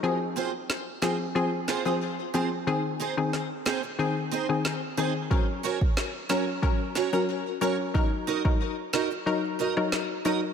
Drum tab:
SD |----o-o---o-----|----o-o-----o---|----o-o---o-----|------o----ro---|
BD |----------------|----------------|o--o----o-------|o--o------------|